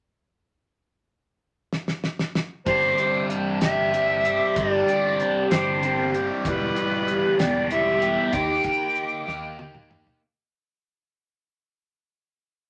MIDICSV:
0, 0, Header, 1, 5, 480
1, 0, Start_track
1, 0, Tempo, 630252
1, 582, Time_signature, 6, 3, 24, 8
1, 9668, End_track
2, 0, Start_track
2, 0, Title_t, "Flute"
2, 0, Program_c, 0, 73
2, 2020, Note_on_c, 0, 72, 99
2, 2475, Note_off_c, 0, 72, 0
2, 2764, Note_on_c, 0, 76, 90
2, 3482, Note_on_c, 0, 74, 87
2, 3493, Note_off_c, 0, 76, 0
2, 4183, Note_off_c, 0, 74, 0
2, 4187, Note_on_c, 0, 72, 78
2, 4699, Note_off_c, 0, 72, 0
2, 4923, Note_on_c, 0, 71, 85
2, 5621, Note_on_c, 0, 74, 90
2, 5633, Note_off_c, 0, 71, 0
2, 5865, Note_off_c, 0, 74, 0
2, 5872, Note_on_c, 0, 76, 98
2, 6347, Note_on_c, 0, 79, 97
2, 6358, Note_off_c, 0, 76, 0
2, 7543, Note_off_c, 0, 79, 0
2, 9668, End_track
3, 0, Start_track
3, 0, Title_t, "Overdriven electric guitar"
3, 0, Program_c, 1, 29
3, 2022, Note_on_c, 1, 43, 81
3, 2027, Note_on_c, 1, 50, 84
3, 2033, Note_on_c, 1, 55, 77
3, 2033, Note_on_c, 1, 60, 87
3, 2038, Note_on_c, 1, 62, 86
3, 2041, Note_on_c, 1, 67, 95
3, 2265, Note_off_c, 1, 67, 0
3, 2268, Note_on_c, 1, 67, 63
3, 2271, Note_off_c, 1, 62, 0
3, 2274, Note_on_c, 1, 62, 56
3, 2278, Note_off_c, 1, 60, 0
3, 2281, Note_on_c, 1, 60, 59
3, 2283, Note_off_c, 1, 55, 0
3, 2286, Note_on_c, 1, 55, 53
3, 2509, Note_off_c, 1, 50, 0
3, 2738, Note_off_c, 1, 62, 0
3, 2741, Note_off_c, 1, 67, 0
3, 2744, Note_off_c, 1, 60, 0
3, 2744, Note_on_c, 1, 67, 79
3, 2747, Note_on_c, 1, 62, 77
3, 2753, Note_on_c, 1, 60, 72
3, 2755, Note_off_c, 1, 55, 0
3, 2758, Note_on_c, 1, 50, 60
3, 2758, Note_on_c, 1, 55, 76
3, 2761, Note_off_c, 1, 43, 0
3, 2764, Note_on_c, 1, 43, 60
3, 2985, Note_off_c, 1, 55, 0
3, 2986, Note_off_c, 1, 60, 0
3, 2988, Note_on_c, 1, 55, 76
3, 2989, Note_off_c, 1, 62, 0
3, 2995, Note_on_c, 1, 60, 75
3, 2998, Note_on_c, 1, 62, 84
3, 3002, Note_off_c, 1, 67, 0
3, 3005, Note_on_c, 1, 67, 84
3, 3231, Note_off_c, 1, 67, 0
3, 3233, Note_off_c, 1, 62, 0
3, 3234, Note_on_c, 1, 67, 68
3, 3235, Note_off_c, 1, 50, 0
3, 3235, Note_off_c, 1, 60, 0
3, 3238, Note_off_c, 1, 43, 0
3, 3242, Note_on_c, 1, 62, 66
3, 3244, Note_on_c, 1, 60, 59
3, 3248, Note_off_c, 1, 55, 0
3, 3251, Note_on_c, 1, 55, 57
3, 3475, Note_on_c, 1, 43, 90
3, 3479, Note_off_c, 1, 60, 0
3, 3480, Note_off_c, 1, 55, 0
3, 3480, Note_off_c, 1, 62, 0
3, 3481, Note_on_c, 1, 50, 79
3, 3483, Note_on_c, 1, 55, 80
3, 3488, Note_on_c, 1, 60, 89
3, 3489, Note_on_c, 1, 62, 89
3, 3490, Note_off_c, 1, 67, 0
3, 3493, Note_on_c, 1, 67, 84
3, 3713, Note_off_c, 1, 67, 0
3, 3716, Note_on_c, 1, 67, 62
3, 3718, Note_off_c, 1, 62, 0
3, 3721, Note_off_c, 1, 60, 0
3, 3727, Note_on_c, 1, 62, 60
3, 3730, Note_on_c, 1, 60, 52
3, 3731, Note_off_c, 1, 55, 0
3, 3734, Note_on_c, 1, 55, 54
3, 3954, Note_off_c, 1, 43, 0
3, 3956, Note_off_c, 1, 50, 0
3, 4193, Note_off_c, 1, 62, 0
3, 4195, Note_off_c, 1, 67, 0
3, 4198, Note_off_c, 1, 60, 0
3, 4198, Note_on_c, 1, 67, 81
3, 4202, Note_on_c, 1, 62, 74
3, 4206, Note_off_c, 1, 55, 0
3, 4207, Note_on_c, 1, 60, 66
3, 4209, Note_on_c, 1, 55, 71
3, 4211, Note_on_c, 1, 43, 63
3, 4211, Note_on_c, 1, 50, 68
3, 4428, Note_off_c, 1, 55, 0
3, 4429, Note_off_c, 1, 60, 0
3, 4431, Note_on_c, 1, 55, 67
3, 4437, Note_off_c, 1, 62, 0
3, 4438, Note_on_c, 1, 60, 76
3, 4446, Note_on_c, 1, 62, 79
3, 4447, Note_off_c, 1, 67, 0
3, 4450, Note_on_c, 1, 67, 75
3, 4669, Note_off_c, 1, 62, 0
3, 4670, Note_off_c, 1, 67, 0
3, 4671, Note_off_c, 1, 60, 0
3, 4673, Note_on_c, 1, 67, 64
3, 4679, Note_on_c, 1, 62, 59
3, 4680, Note_on_c, 1, 60, 67
3, 4681, Note_off_c, 1, 43, 0
3, 4681, Note_off_c, 1, 50, 0
3, 4682, Note_off_c, 1, 55, 0
3, 4685, Note_on_c, 1, 55, 55
3, 4900, Note_off_c, 1, 62, 0
3, 4901, Note_off_c, 1, 60, 0
3, 4914, Note_on_c, 1, 40, 88
3, 4917, Note_off_c, 1, 55, 0
3, 4920, Note_on_c, 1, 52, 89
3, 4921, Note_on_c, 1, 47, 87
3, 4924, Note_on_c, 1, 55, 92
3, 4927, Note_on_c, 1, 59, 90
3, 4929, Note_off_c, 1, 67, 0
3, 4932, Note_on_c, 1, 67, 99
3, 5144, Note_off_c, 1, 59, 0
3, 5144, Note_off_c, 1, 67, 0
3, 5147, Note_on_c, 1, 67, 65
3, 5154, Note_on_c, 1, 59, 68
3, 5157, Note_off_c, 1, 52, 0
3, 5159, Note_off_c, 1, 55, 0
3, 5162, Note_on_c, 1, 55, 53
3, 5166, Note_on_c, 1, 52, 48
3, 5392, Note_off_c, 1, 40, 0
3, 5395, Note_off_c, 1, 47, 0
3, 5619, Note_off_c, 1, 59, 0
3, 5622, Note_off_c, 1, 67, 0
3, 5624, Note_off_c, 1, 52, 0
3, 5625, Note_on_c, 1, 67, 82
3, 5628, Note_on_c, 1, 59, 79
3, 5630, Note_off_c, 1, 55, 0
3, 5633, Note_on_c, 1, 52, 63
3, 5633, Note_on_c, 1, 55, 72
3, 5640, Note_on_c, 1, 47, 69
3, 5643, Note_on_c, 1, 40, 64
3, 5848, Note_off_c, 1, 52, 0
3, 5857, Note_on_c, 1, 52, 79
3, 5860, Note_off_c, 1, 59, 0
3, 5862, Note_off_c, 1, 55, 0
3, 5865, Note_on_c, 1, 55, 75
3, 5869, Note_on_c, 1, 59, 67
3, 5872, Note_off_c, 1, 67, 0
3, 5875, Note_on_c, 1, 67, 81
3, 6099, Note_off_c, 1, 67, 0
3, 6101, Note_off_c, 1, 59, 0
3, 6102, Note_on_c, 1, 67, 68
3, 6110, Note_on_c, 1, 59, 66
3, 6113, Note_off_c, 1, 47, 0
3, 6113, Note_off_c, 1, 52, 0
3, 6115, Note_off_c, 1, 40, 0
3, 6115, Note_off_c, 1, 55, 0
3, 6118, Note_on_c, 1, 55, 59
3, 6122, Note_on_c, 1, 52, 55
3, 6334, Note_off_c, 1, 59, 0
3, 6337, Note_off_c, 1, 52, 0
3, 6340, Note_on_c, 1, 51, 88
3, 6346, Note_off_c, 1, 55, 0
3, 6349, Note_on_c, 1, 58, 91
3, 6354, Note_off_c, 1, 67, 0
3, 6355, Note_on_c, 1, 63, 87
3, 6357, Note_on_c, 1, 67, 94
3, 6569, Note_off_c, 1, 67, 0
3, 6578, Note_on_c, 1, 67, 61
3, 6580, Note_off_c, 1, 63, 0
3, 6588, Note_off_c, 1, 58, 0
3, 6589, Note_on_c, 1, 63, 61
3, 6597, Note_on_c, 1, 58, 52
3, 6822, Note_off_c, 1, 51, 0
3, 7043, Note_off_c, 1, 67, 0
3, 7047, Note_off_c, 1, 63, 0
3, 7052, Note_on_c, 1, 67, 68
3, 7056, Note_on_c, 1, 63, 64
3, 7057, Note_off_c, 1, 58, 0
3, 7067, Note_on_c, 1, 58, 69
3, 7069, Note_on_c, 1, 51, 62
3, 7282, Note_off_c, 1, 51, 0
3, 7291, Note_off_c, 1, 58, 0
3, 7291, Note_on_c, 1, 51, 71
3, 7293, Note_off_c, 1, 63, 0
3, 7298, Note_off_c, 1, 67, 0
3, 7300, Note_on_c, 1, 58, 78
3, 7303, Note_on_c, 1, 63, 74
3, 7307, Note_on_c, 1, 67, 89
3, 7528, Note_off_c, 1, 67, 0
3, 7534, Note_off_c, 1, 63, 0
3, 7537, Note_on_c, 1, 67, 65
3, 7543, Note_on_c, 1, 63, 64
3, 7545, Note_off_c, 1, 58, 0
3, 7554, Note_on_c, 1, 58, 57
3, 7761, Note_off_c, 1, 51, 0
3, 7765, Note_off_c, 1, 67, 0
3, 7768, Note_off_c, 1, 63, 0
3, 7773, Note_off_c, 1, 58, 0
3, 9668, End_track
4, 0, Start_track
4, 0, Title_t, "Fingered electric bass"
4, 0, Program_c, 2, 33
4, 2028, Note_on_c, 2, 31, 79
4, 2227, Note_off_c, 2, 31, 0
4, 2756, Note_on_c, 2, 31, 86
4, 3348, Note_off_c, 2, 31, 0
4, 3479, Note_on_c, 2, 31, 90
4, 3674, Note_off_c, 2, 31, 0
4, 4201, Note_on_c, 2, 31, 91
4, 4790, Note_off_c, 2, 31, 0
4, 4915, Note_on_c, 2, 28, 93
4, 5111, Note_off_c, 2, 28, 0
4, 5633, Note_on_c, 2, 28, 90
4, 6224, Note_off_c, 2, 28, 0
4, 6347, Note_on_c, 2, 39, 84
4, 6545, Note_off_c, 2, 39, 0
4, 7064, Note_on_c, 2, 39, 88
4, 7655, Note_off_c, 2, 39, 0
4, 9668, End_track
5, 0, Start_track
5, 0, Title_t, "Drums"
5, 1314, Note_on_c, 9, 38, 69
5, 1390, Note_off_c, 9, 38, 0
5, 1431, Note_on_c, 9, 38, 67
5, 1508, Note_off_c, 9, 38, 0
5, 1551, Note_on_c, 9, 38, 77
5, 1627, Note_off_c, 9, 38, 0
5, 1671, Note_on_c, 9, 38, 77
5, 1747, Note_off_c, 9, 38, 0
5, 1792, Note_on_c, 9, 38, 88
5, 1869, Note_off_c, 9, 38, 0
5, 2029, Note_on_c, 9, 36, 94
5, 2029, Note_on_c, 9, 42, 66
5, 2105, Note_off_c, 9, 42, 0
5, 2106, Note_off_c, 9, 36, 0
5, 2269, Note_on_c, 9, 42, 56
5, 2345, Note_off_c, 9, 42, 0
5, 2513, Note_on_c, 9, 42, 54
5, 2589, Note_off_c, 9, 42, 0
5, 2751, Note_on_c, 9, 42, 82
5, 2756, Note_on_c, 9, 38, 96
5, 2827, Note_off_c, 9, 42, 0
5, 2832, Note_off_c, 9, 38, 0
5, 3000, Note_on_c, 9, 42, 68
5, 3076, Note_off_c, 9, 42, 0
5, 3236, Note_on_c, 9, 42, 59
5, 3312, Note_off_c, 9, 42, 0
5, 3475, Note_on_c, 9, 36, 103
5, 3475, Note_on_c, 9, 42, 76
5, 3551, Note_off_c, 9, 36, 0
5, 3551, Note_off_c, 9, 42, 0
5, 3720, Note_on_c, 9, 42, 59
5, 3796, Note_off_c, 9, 42, 0
5, 3958, Note_on_c, 9, 42, 53
5, 4035, Note_off_c, 9, 42, 0
5, 4197, Note_on_c, 9, 42, 78
5, 4203, Note_on_c, 9, 38, 101
5, 4273, Note_off_c, 9, 42, 0
5, 4279, Note_off_c, 9, 38, 0
5, 4440, Note_on_c, 9, 42, 57
5, 4516, Note_off_c, 9, 42, 0
5, 4680, Note_on_c, 9, 42, 51
5, 4756, Note_off_c, 9, 42, 0
5, 4913, Note_on_c, 9, 36, 107
5, 4914, Note_on_c, 9, 42, 73
5, 4989, Note_off_c, 9, 36, 0
5, 4991, Note_off_c, 9, 42, 0
5, 5150, Note_on_c, 9, 42, 56
5, 5226, Note_off_c, 9, 42, 0
5, 5391, Note_on_c, 9, 42, 55
5, 5467, Note_off_c, 9, 42, 0
5, 5631, Note_on_c, 9, 42, 71
5, 5636, Note_on_c, 9, 38, 105
5, 5707, Note_off_c, 9, 42, 0
5, 5712, Note_off_c, 9, 38, 0
5, 5868, Note_on_c, 9, 42, 60
5, 5944, Note_off_c, 9, 42, 0
5, 6106, Note_on_c, 9, 42, 51
5, 6183, Note_off_c, 9, 42, 0
5, 6341, Note_on_c, 9, 42, 74
5, 6346, Note_on_c, 9, 36, 96
5, 6417, Note_off_c, 9, 42, 0
5, 6422, Note_off_c, 9, 36, 0
5, 6577, Note_on_c, 9, 42, 57
5, 6584, Note_on_c, 9, 36, 75
5, 6653, Note_off_c, 9, 42, 0
5, 6660, Note_off_c, 9, 36, 0
5, 6819, Note_on_c, 9, 42, 55
5, 6895, Note_off_c, 9, 42, 0
5, 7069, Note_on_c, 9, 38, 56
5, 7145, Note_off_c, 9, 38, 0
5, 7304, Note_on_c, 9, 48, 70
5, 7380, Note_off_c, 9, 48, 0
5, 7423, Note_on_c, 9, 47, 67
5, 7499, Note_off_c, 9, 47, 0
5, 7546, Note_on_c, 9, 45, 75
5, 7622, Note_off_c, 9, 45, 0
5, 7667, Note_on_c, 9, 43, 75
5, 7743, Note_off_c, 9, 43, 0
5, 9668, End_track
0, 0, End_of_file